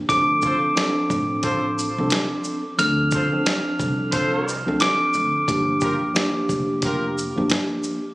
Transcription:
0.08 0.52 D2 loud
0.08 0.72 F3 medium
0.08 0.72 C4 medium
0.08 0.73 D4 medium
0.08 0.73 A4 loud
0.08 2.28 D6 loud
0.08 2.28 D7 medium
0.08 kick loud
0.08 closed hi-hat medium
0.42 0.56 F4 loud
0.42 0.56 A4 loud
0.42 0.56 C5 loud
0.42 kick medium
0.42 shaker medium
0.75 1.86 F3 medium
0.75 1.86 C4 medium
0.75 1.87 D4 medium
0.75 1.87 A4 loud
0.75 snare loud
0.75 closed hi-hat medium
1.10 1.94 A1 loud
1.10 kick medium
1.10 shaker medium
1.42 1.64 F4 medium
1.42 1.64 A4 loud
1.42 1.64 C5 loud
1.42 kick medium
1.42 closed hi-hat medium
1.79 shaker medium
1.98 2.09 C2 medium
1.98 2.59 F3 medium
1.98 2.59 C4 medium
1.98 2.60 D4 medium
1.98 2.60 A4 loud
2.10 snare loud
2.10 closed hi-hat medium
2.44 shaker soft
2.78 3.22 D2 loud
2.78 3.28 F3 medium
2.78 3.28 C4 medium
2.78 3.28 D4 medium
2.78 3.29 A4 loud
2.78 4.30 F6 loud
2.78 4.31 F7 medium
2.78 closed hi-hat medium
3.11 3.26 F4 loud
3.11 3.26 A4 loud
3.11 3.26 C5 loud
3.11 kick loud
3.11 shaker medium
3.32 4.39 F3 loud
3.32 4.40 C4 medium
3.32 4.40 D4 medium
3.32 4.40 A4 loud
3.46 snare loud
3.46 closed hi-hat medium
3.80 4.64 C2 medium
3.80 kick medium
3.80 shaker medium
4.11 4.58 F4 loud
4.11 4.58 A4 loud
4.11 4.58 C5 loud
4.11 kick medium
4.11 closed hi-hat medium
4.48 shaker medium
4.66 4.78 D2 medium
4.66 5.42 F3 medium
4.66 5.43 C4 medium
4.66 5.43 D4 medium
4.66 5.43 A4 loud
4.80 5.11 D6 loud
4.80 5.12 D7 medium
4.80 snare loud
4.80 closed hi-hat medium
5.14 5.31 D2 loud
5.14 shaker soft
5.48 5.91 G1 loud
5.48 6.11 F3 medium
5.48 6.11 A#3 medium
5.48 6.12 D4 medium
5.48 6.12 G4 loud
5.48 kick loud
5.48 closed hi-hat medium
5.80 5.94 F4 loud
5.80 5.94 G4 medium
5.80 5.94 A#4 loud
5.80 kick loud
5.80 shaker medium
6.14 7.25 F3 medium
6.14 7.26 A#3 medium
6.14 7.26 D4 medium
6.14 7.26 G4 loud
6.14 snare loud
6.14 closed hi-hat medium
6.49 7.34 F1 loud
6.49 kick medium
6.49 shaker medium
6.82 7.05 F4 medium
6.82 7.04 G4 medium
6.82 7.05 A#4 loud
6.82 kick medium
6.82 closed hi-hat medium
7.18 shaker medium
7.36 7.48 G1 medium
7.36 7.98 F3 medium
7.36 7.98 A#3 medium
7.36 7.98 D4 medium
7.36 7.99 G4 medium
7.50 snare loud
7.50 closed hi-hat medium
7.83 shaker soft

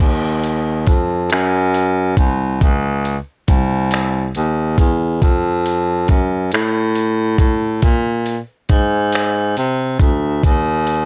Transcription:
0.00 0.83 D#2 medium
0.00 kick loud
0.00 closed hi-hat soft
0.00 crash medium
0.43 closed hi-hat soft
0.87 1.27 F2 medium
0.87 kick medium
0.87 closed hi-hat soft
1.30 2.14 F#2 loud
1.30 finger snap medium
1.30 closed hi-hat medium
1.74 closed hi-hat soft
2.17 2.57 C2 medium
2.17 kick medium
2.17 closed hi-hat soft
2.61 3.17 C#2 medium
2.61 kick loud
2.61 closed hi-hat soft
3.05 closed hi-hat soft
3.48 4.31 C2 medium
3.48 kick medium
3.48 closed hi-hat soft
3.91 finger snap medium
3.91 closed hi-hat medium
4.35 4.75 D#2 medium
4.35 closed hi-hat soft
4.78 5.18 E2 medium
4.78 kick medium
4.78 closed hi-hat soft
5.22 6.05 F2 medium
5.22 kick medium
5.22 closed hi-hat soft
5.66 closed hi-hat soft
6.08 6.48 F#2 medium
6.08 kick medium
6.08 closed hi-hat soft
6.51 7.36 A2 medium
6.51 finger snap medium
6.51 closed hi-hat medium
6.95 closed hi-hat soft
7.38 7.78 A2 medium
7.38 kick medium
7.38 closed hi-hat soft
7.82 8.39 A#2 medium
7.82 kick medium
7.82 closed hi-hat medium
8.26 closed hi-hat soft
8.69 9.53 G#2 medium
8.69 kick medium
8.69 closed hi-hat soft
9.12 finger snap medium
9.12 closed hi-hat medium
9.57 9.96 C3 medium
9.57 closed hi-hat soft
9.99 10.39 D2 medium
9.99 kick medium
9.99 closed hi-hat soft
10.43 11.05 D#2 medium
10.43 kick medium
10.43 closed hi-hat medium
10.87 closed hi-hat soft

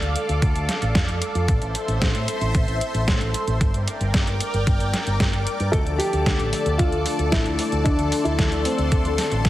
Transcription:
0.00 0.14 D2 medium
0.00 3.57 A4 medium
0.00 1.45 D5 medium
0.00 1.45 F5 medium
0.00 1.45 D6 medium
0.00 closed hi-hat soft
0.16 closed hi-hat loud
0.29 0.40 D2 medium
0.29 closed hi-hat soft
0.42 0.54 D2 loud
0.42 kick loud
0.42 closed hi-hat medium
0.56 0.67 D2 medium
0.56 closed hi-hat soft
0.69 snare medium
0.69 closed hi-hat medium
0.82 0.93 A1 medium
0.82 closed hi-hat soft
0.95 1.07 F2 loud
0.95 kick loud
0.95 snare loud
0.95 closed hi-hat medium
1.09 1.20 F2 medium
1.09 closed hi-hat soft
1.22 closed hi-hat loud
1.35 1.46 F2 medium
1.35 closed hi-hat soft
1.48 1.60 A1 loud
1.48 3.59 C5 medium
1.48 3.59 E5 medium
1.48 3.59 C6 medium
1.48 kick loud
1.48 closed hi-hat medium
1.62 1.73 A1 medium
1.62 closed hi-hat soft
1.75 closed hi-hat medium
1.88 1.99 A1 medium
1.88 closed hi-hat soft
2.02 2.13 A1 loud
2.02 kick loud
2.02 snare loud
2.02 closed hi-hat medium
2.15 2.26 A2 medium
2.15 closed hi-hat soft
2.28 closed hi-hat medium
2.41 2.53 A1 medium
2.41 closed hi-hat soft
2.55 2.66 A1 loud
2.55 kick loud
2.55 closed hi-hat medium
2.68 2.79 A1 medium
2.68 closed hi-hat soft
2.81 closed hi-hat medium
2.94 3.06 A1 medium
2.94 closed hi-hat soft
3.08 3.19 A2 loud
3.08 kick loud
3.08 snare loud
3.08 closed hi-hat medium
3.21 3.32 A1 medium
3.21 closed hi-hat soft
3.34 closed hi-hat medium
3.47 3.59 A1 medium
3.47 closed hi-hat soft
3.61 3.72 G1 loud
3.61 5.71 A#4 medium
3.61 9.49 D5 medium
3.61 5.71 G5 medium
3.61 7.82 D6 medium
3.61 kick loud
3.61 closed hi-hat medium
3.74 3.85 G1 medium
3.74 closed hi-hat soft
3.88 closed hi-hat medium
4.01 4.12 G1 medium
4.01 closed hi-hat soft
4.14 4.25 G1 loud
4.14 kick loud
4.14 snare loud
4.14 closed hi-hat medium
4.27 4.39 G1 medium
4.27 closed hi-hat soft
4.40 closed hi-hat medium
4.54 4.65 G1 medium
4.54 closed hi-hat soft
4.67 4.78 G1 loud
4.67 kick loud
4.67 closed hi-hat medium
4.80 4.92 G1 medium
4.80 closed hi-hat soft
4.94 snare medium
4.94 closed hi-hat medium
5.07 5.18 G1 medium
5.07 closed hi-hat soft
5.20 5.31 G1 loud
5.20 kick loud
5.20 snare loud
5.20 closed hi-hat medium
5.33 5.45 G1 medium
5.33 closed hi-hat soft
5.47 closed hi-hat medium
5.60 5.71 G2 medium
5.60 closed hi-hat soft
5.72 5.84 D2 loud
5.72 9.49 D3 medium
5.72 9.49 F3 medium
5.72 9.49 A3 medium
5.72 9.49 D4 medium
5.72 5.78 A4 loud
5.72 9.49 A4 loud
5.72 9.49 A4 medium
5.72 9.49 A5 medium
5.72 kick loud
5.72 closed hi-hat medium
5.87 5.98 D2 medium
5.87 closed hi-hat soft
5.98 6.75 G4 loud
5.98 open hi-hat loud
6.13 6.24 D2 medium
6.13 closed hi-hat soft
6.26 6.38 D2 medium
6.26 kick loud
6.26 snare loud
6.26 closed hi-hat medium
6.40 6.51 A1 medium
6.40 closed hi-hat soft
6.53 open hi-hat loud
6.66 6.77 D2 medium
6.66 closed hi-hat soft
6.78 6.91 D2 loud
6.78 7.33 F4 loud
6.78 kick loud
6.78 closed hi-hat medium
6.92 7.04 D2 medium
6.92 closed hi-hat soft
7.06 open hi-hat loud
7.19 7.30 D2 medium
7.19 closed hi-hat soft
7.31 7.44 A1 loud
7.31 7.87 E4 medium
7.31 kick loud
7.31 snare loud
7.31 closed hi-hat medium
7.46 7.57 D2 medium
7.46 closed hi-hat soft
7.59 open hi-hat loud
7.72 7.84 D2 medium
7.72 closed hi-hat soft
7.84 7.97 D2 loud
7.84 8.22 D4 loud
7.84 9.49 C6 medium
7.84 kick loud
7.84 closed hi-hat medium
7.99 8.10 D2 medium
7.99 closed hi-hat soft
8.12 open hi-hat loud
8.24 8.37 D2 medium
8.24 8.66 E4 medium
8.24 closed hi-hat soft
8.39 8.50 D2 loud
8.39 kick loud
8.39 snare loud
8.39 closed hi-hat medium
8.52 8.63 D2 medium
8.52 closed hi-hat soft
8.64 9.40 C4 medium
8.64 open hi-hat loud
8.78 8.90 D2 medium
8.78 closed hi-hat soft
8.92 9.03 D2 loud
8.92 kick loud
8.92 closed hi-hat medium
9.05 9.16 D2 medium
9.05 closed hi-hat soft
9.18 snare medium
9.18 open hi-hat loud
9.32 9.43 A1 medium
9.32 closed hi-hat soft
9.45 9.49 F2 loud
9.45 kick loud
9.45 snare loud
9.45 closed hi-hat medium

